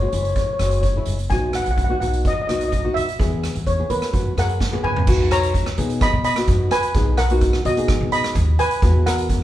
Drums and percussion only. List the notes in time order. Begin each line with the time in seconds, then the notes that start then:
0.13 closed hi-hat
0.25 closed hi-hat
0.35 kick, closed hi-hat
0.59 cross-stick, closed hi-hat
0.71 closed hi-hat
0.83 kick, closed hi-hat
1.06 closed hi-hat
1.19 closed hi-hat
1.30 kick, closed hi-hat
1.53 cross-stick, closed hi-hat
1.66 closed hi-hat
1.78 kick, closed hi-hat
2.02 closed hi-hat
2.13 closed hi-hat
2.25 kick, closed hi-hat
2.49 cross-stick, closed hi-hat
2.61 closed hi-hat
2.72 kick, closed hi-hat
2.97 closed hi-hat
3.09 closed hi-hat
3.20 kick, closed hi-hat
3.44 cross-stick, closed hi-hat
3.55 closed hi-hat
3.66 kick, closed hi-hat
3.90 closed hi-hat
4.02 cross-stick, closed hi-hat
4.14 kick, closed hi-hat
4.38 cross-stick, closed hi-hat
4.49 closed hi-hat
4.60 kick, snare
4.73 high tom
4.84 mid tom
4.96 floor tom
5.07 kick, crash
5.31 cross-stick, closed hi-hat
5.43 closed hi-hat
5.54 kick, closed hi-hat
5.66 cross-stick
5.78 closed hi-hat
5.90 closed hi-hat
6.01 kick, cross-stick, closed hi-hat
6.24 closed hi-hat
6.36 cross-stick, closed hi-hat
6.48 kick, closed hi-hat
6.71 cross-stick, closed hi-hat
6.83 closed hi-hat
6.95 kick, closed hi-hat
7.17 cross-stick, closed hi-hat
7.30 closed hi-hat
7.41 kick, closed hi-hat
7.53 cross-stick
7.65 closed hi-hat
7.77 closed hi-hat
7.88 kick, cross-stick, closed hi-hat
8.12 closed hi-hat
8.24 cross-stick, closed hi-hat
8.35 kick, closed hi-hat
8.59 closed hi-hat
8.71 closed hi-hat
8.82 kick, closed hi-hat
9.07 cross-stick, closed hi-hat
9.18 closed hi-hat
9.30 kick, closed hi-hat